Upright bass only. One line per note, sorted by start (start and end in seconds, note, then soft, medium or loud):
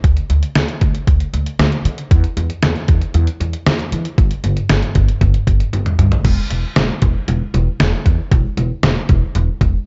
0.04 0.16 D2 loud
0.30 0.41 D2 loud
0.56 0.67 D2 medium
0.82 0.93 D2 medium
1.07 1.19 D2 loud
1.33 1.45 D2 medium
1.59 1.71 D2 loud
1.85 1.97 D3 medium
2.11 2.23 E2 loud
2.37 2.48 E2 loud
2.63 2.74 E2 loud
2.89 3.00 E2 medium
3.14 3.26 E2 loud
3.40 3.52 E2 medium
3.66 3.78 E2 medium
3.92 4.04 E3 medium
4.18 4.29 G1 medium
4.44 4.55 G1 medium
4.69 4.81 G1 medium
4.96 5.07 G1 medium
5.21 5.33 G1 loud
5.47 5.59 G1 medium
5.73 5.85 G1 medium
5.99 6.10 G2 medium
6.25 6.36 E1 loud
6.50 6.62 E1 medium
6.76 6.88 E1 medium
7.02 7.14 E1 medium
7.28 7.40 E1 loud
7.54 7.66 E1 loud
7.80 7.91 E1 loud
8.06 8.17 E2 medium
8.32 8.43 E1 loud
8.57 8.69 E1 medium
8.83 8.95 E1 loud
9.09 9.21 E1 medium
9.35 9.47 E1 loud
9.61 9.72 E1 loud